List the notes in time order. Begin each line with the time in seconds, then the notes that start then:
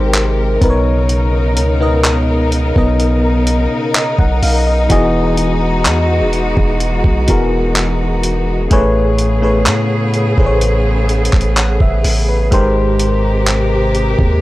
Already playing: G#1 C3 G#3 D#4 G4 A#4 C5
0.14 clap, closed hi-hat
0.61 B1 B2 C#3 B3 D#4 A#4 B4, kick, closed hi-hat
0.70 C#5
1.09 closed hi-hat
1.57 C#2, closed hi-hat
1.80 B2 B3 D#4 A#4 D#5
2.04 clap, closed hi-hat
2.52 closed hi-hat
2.75 B1 B2 B3 D#4 A#4 D#5, kick
3.00 closed hi-hat
3.47 closed hi-hat
3.94 D#5, clap, closed hi-hat
4.19 B1 F#5, kick
4.42 B1 F5, open hi-hat
4.67 D#5
4.89 E1 E3 G#3 B3 F#4 G#4 D#5, kick, closed hi-hat
5.37 closed hi-hat
5.85 E2, clap, closed hi-hat
6.21 E1
6.33 closed hi-hat
6.57 E1, kick
6.80 closed hi-hat
7.04 B1, kick
7.27 E1 E3 B3 F#4 G#4 A#4, kick, closed hi-hat
7.75 clap, closed hi-hat
8.23 closed hi-hat
8.70 A1 A2 C#3 A3 B3 G#4 B4 C#5, kick, closed hi-hat
9.19 closed hi-hat
9.42 A2 A3 G#4 B4 C#5
9.66 A2, clap, closed hi-hat
10.14 closed hi-hat
10.37 A1 A2 A3 G#4 B4 C5, kick
10.46 C#5
10.61 closed hi-hat
11.09 closed hi-hat
11.25 closed hi-hat
11.33 A1, kick, clap
11.41 closed hi-hat
11.56 F#5, clap, closed hi-hat
11.80 A1 E5, kick
12.04 A1, open hi-hat
12.29 B4
12.51 G#1 G#2 C3 G#3 G4 A#4 C5, kick, closed hi-hat
12.99 closed hi-hat
13.47 clap, closed hi-hat
13.95 closed hi-hat
14.19 D#2, kick